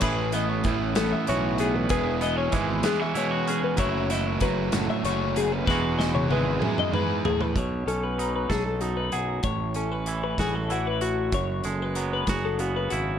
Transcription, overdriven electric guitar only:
\new Staff \with { instrumentName = "Overdriven electric guitar" } { \time 6/8 \key e \major \tempo 4. = 64 <a, e a cis' e'>8 <a cis' e'>8 <e a cis' e'>8 <a, e a cis' e'>8 <e a cis' e'>4 | <e gis b e'>8 <gis b e'>8 <e gis b e'>8 <e gis b e'>8 <e gis b e'>4 | <fis a cis' fis'>8 <a cis' fis'>8 <fis a cis' fis'>8 <fis a cis' fis'>8 <fis a cis' fis'>4 | <e b e' gis'>8 <b e' gis'>8 <e b e' gis'>8 <e b e' gis'>8 <e b e' gis'>4 |
r2. | r2. | r2. | }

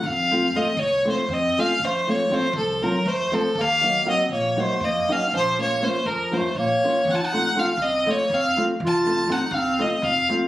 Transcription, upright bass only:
\new Staff \with { instrumentName = "Upright bass" } { \clef bass \time 7/8 \tempo 4 = 120 f,4. c,4 f,8 r8 | f,4. c,4 f,8 r8 | ees,4. bes,,4 f,8 r8 | bes,,4. f,4 bes,,8 r8 |
f,,4. c,4 f,,8 r8 | f,,4. c,4 f,,8 r8 | }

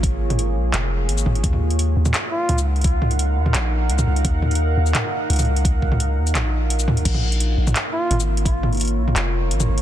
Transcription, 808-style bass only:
\new Staff \with { instrumentName = "808-style bass" } { \clef bass \time 4/4 \key ees \dorian \tempo 4 = 171 aes,,4. bes,,8 f,,4 aes,,8 aes,,8 | ees,4. ees,8 r4 des,4~ | des,4. ees,8 bes,,4 des,8 des,8 | ees,4. ees,8 r4 des,4~ |
des,4. ees,8 bes,,4. ees,8 | bes,,4. bes,,8 r4 aes,,4~ | aes,,4. bes,,8 f,,4 aes,,8 aes,,8 | }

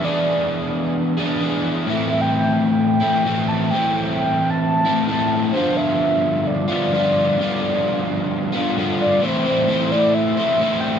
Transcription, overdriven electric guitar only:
\new Staff \with { instrumentName = "Overdriven electric guitar" } { \time 4/4 \key a \minor \tempo 4 = 131 <e b d' gis'>2~ <e b d' gis'>8 <e b d' gis'>8 <e b d' gis'>4 | <a, e a c' e'>2~ <a, e a c' e'>8 <a, e a c' e'>8 <a, e a c' e'>4 | <a, e a c' e'>2~ <a, e a c' e'>8 <a, e a c' e'>8 <a, e a c' e'>4 | <g, d f b f'>2~ <g, d f b f'>8 <g, d f b f'>8 <g, d f b f'>4 |
<g, d f b f'>2~ <g, d f b f'>8 <g, d f b f'>8 <g, d f b f'>4 | <a, e a c' e' c''>8 <a c' e' c''>8 <a, e a c' e' c''>8 <a c' e' c''>4 <a c' e' c''>8 <a c' e' c''>4 | }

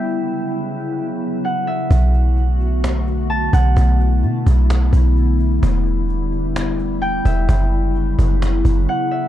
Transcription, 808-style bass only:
\new Staff \with { instrumentName = "808-style bass" } { \clef bass \time 4/4 \key b \minor \tempo 4 = 129 r1 | b,,2.~ b,,8 b,,8 | b,,4 b,8 b,,4 b,,4. | e,,2.~ e,,8 e,,8 |
fis,,4. fis,,4 fis,,8 r4 | }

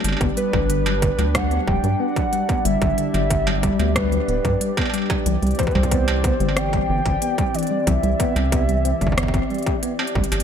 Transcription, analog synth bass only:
\new Staff \with { instrumentName = "Analog synth bass" } { \clef bass \time 4/4 \key g \major \tempo 4 = 92 g,,16 g,,16 r16 g,,4 d,8. d,,16 g,16 r4 | g,,16 g,,16 r16 g,,4 d,8. d,,16 g,16 r4 | c,16 c,16 r16 c,4 g,,8. g,,16 g,,16 r4 | c,16 c,16 r16 c,4 g,,8. r4 g,,16 g,,16 | }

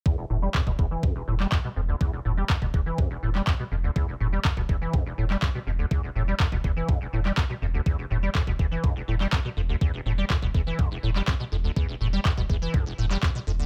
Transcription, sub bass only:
\new Staff \with { instrumentName = "Sub bass" } { \clef bass \time 4/4 \key e \phrygian \tempo 4 = 123 r8 e,,16 r8 e,,16 e,,16 r8. e,,16 r8. e,,16 r16 | r8 e,,16 r8 e,,16 e,,16 r8. e,,16 r8. e,,16 r16 | r8 e,,16 r8 e,,16 e,,16 r8. e,,16 r8. e,,16 r16 | r8 e,,16 r8 e,,16 e,,16 r8. e,,16 r8. e,,16 r16 |
r8 e,,16 r8 e,,16 e,,16 r8. e,,16 r8. e,,16 r16 | r8 e,,16 r8 e,,16 e,,16 r8. e,,16 r8. e,,16 r16 | r8 e,,16 r8 e,,16 e,,16 r8. e,,16 r8. e,,16 r16 | }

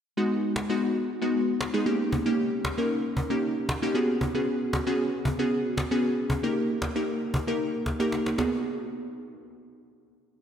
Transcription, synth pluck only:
\new Staff \with { instrumentName = "Synth pluck" } { \time 4/4 \key dis \minor \tempo 4 = 115 r16 <gis b dis' fis'>8. r16 <gis b dis' fis'>8. r16 <gis b dis' fis'>8. r16 <gis b dis' gis'>16 <ais cis' dis' g'>8 | r16 <ais cis' dis' g'>8. r16 <ais cis' dis' ais'>8. r16 <ais cis' dis' g'>8. r16 <ais cis' dis' g'>16 <b cis' fis' gis'>8 | r16 <b cis' fis' gis'>8. r16 <b cis' fis' gis'>8. r16 <b cis' fis' gis'>8. r16 <b cis' fis' gis'>8. | r16 <ais dis' g' ais'>8. r16 <ais dis' g' ais'>8. r16 <ais dis' g' ais'>8. r16 <ais dis' g' ais'>8. |
<b dis' fis' gis'>8 r2. r8 | }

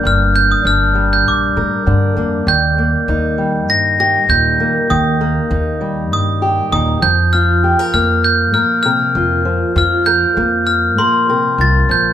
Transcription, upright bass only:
\new Staff \with { instrumentName = "Upright bass" } { \clef bass \time 4/4 \key f \mixolydian \tempo 4 = 99 g,,4 g,,4 bes,,8 a,8 g,8 f,8 | ees,4 ees,4 g,4 ees,4 | ees,4 ees,4 g,4 ees,8 f,8~ | f,4 f,4 bes,4 f,4 |
f,4 f,4 bes,4 c,8 bes,,8 | }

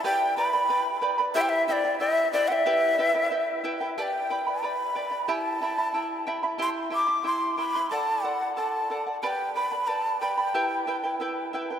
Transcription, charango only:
\new Staff \with { instrumentName = "Charango" } { \time 2/4 \key g \major \tempo 4 = 91 <g' b' d'' g'' b''>8 <b' d'' g'' b''>16 <b' d'' b''>16 <b' d'' g'' b''>8 <b' d'' g'' b''>16 <b' d'' b''>16 | <e' g' c'' e'' g''>8 <e' c'' e'' g''>16 <e' c'' g''>16 <e' c'' e'' g''>8 <e' c'' e'' g''>16 <e' c'' g''>16 | <e' g' b' e'' g''>8 <e' b' e'' g''>16 <e' b' g''>16 <e' b' e'' g''>8 <e' b' e'' g''>16 <e' b' g''>16 | <g' b' d'' g'' b''>8 <b' d'' g'' b''>16 <b' d'' b''>16 <b' d'' g'' b''>8 <b' d'' g'' b''>16 <b' d'' b''>16 |
<e' g' e'' g'' b''>8 <e' e'' g'' b''>16 <e' e'' b''>16 <e' e'' g'' b''>8 <e' e'' g'' b''>16 <e' e'' b''>16 | <e' g' e'' g'' c'''>8 <e' e'' g'' c'''>16 <e' e'' c'''>16 <e' e'' g'' c'''>8 <e' e'' g'' c'''>16 <e' e'' c'''>16 | <a' d'' fis''>8 <a' d'' fis''>16 <d'' fis''>16 <a' d'' fis''>8 <a' d'' fis''>16 <d'' fis''>16 | <g' b' d'' g'' b''>8 <b' d'' g'' b''>16 <b' d'' b''>16 <b' d'' g'' b''>8 <b' d'' g'' b''>16 <b' d'' b''>16 |
<e' g' b' e'' g''>8 <e' b' e'' g''>16 <e' b' g''>16 <e' b' e'' g''>8 <e' b' e'' g''>16 <e' b' g''>16 | }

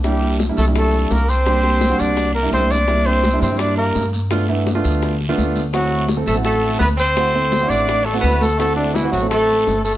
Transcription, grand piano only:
\new Staff \with { instrumentName = "Grand piano" } { \time 4/4 \key c \lydian \tempo 4 = 168 <g bes d' e'>4 r16 <g bes d' e'>16 r16 <bes, g d' e'>4. r8. | <g bes d' g'>16 r16 <g bes d' g'>8 r16 <g bes d' fis'>4 r8 <g bes d' e'>8. r8 | <g bes d' e'>4 r16 <g bes d' e'>16 r16 <g bes d' e'>4. r8. | <a b d' f'>16 r16 <a b d' e'>8 r16 <a b d' f'>4 r8 <a b d' f'>8. r8 |
<a c' e' fis'>4 r16 <a c' e' a'>16 r16 <a c' e' fis'>4. r8. | <a c' e' fis'>16 r16 <a c' e' a'>8 r16 <a c' e' fis'>4 r8 <a c' e' fis'>8. r8 | <a c' e' fis'>4 r16 <a c' e' fis'>16 r16 <a c' e' a'>4. r8. | }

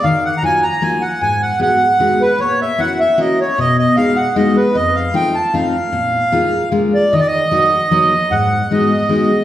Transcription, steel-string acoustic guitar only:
\new Staff \with { instrumentName = "Steel-string acoustic guitar" } { \time 3/4 \key aes \dorian \tempo 4 = 152 ees4 <ges bes ees' f'>8 r8 <ges bes ees' f'>8 r8 | aes,4 <aes ces' ees' ges'>8 r8 <aes ces' ees' ges'>8 r8 | bes,4 <bes des' fes' ges'>8 r8 <bes des' fes' ges'>8 r8 | b,4 <gis b dis' fis'>8 r8 <gis b dis' fis'>8 r8 |
f,4 <a c' ees' f'>8 r8 <a c' ees' f'>8 r8 | bes,4 <aes bes ees' f'>8 r8 <aes bes d' f'>8 r8 | ees4 <ges bes ees' ges'>8 r8 <ges bes ees' ges'>8 r8 | aes,4 <aes ces' ees' ges'>8 r8 <aes ces' ees' ges'>8 r8 | }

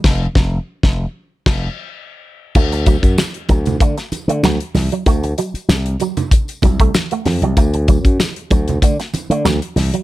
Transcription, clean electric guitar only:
\new Staff \with { instrumentName = "Clean electric guitar" } { \clef bass \time 4/4 \key d \mixolydian \tempo 4 = 96 r1 | a16 r16 fis16 r8. fis16 r16 a16 r8 a16 fis16 r8 fis16 | a16 r16 fis16 r8. fis16 r8. fis16 a16 r16 a16 r16 fis16 | a16 r16 fis16 r8. fis16 r16 a16 r8 a16 fis16 r8 fis16 | }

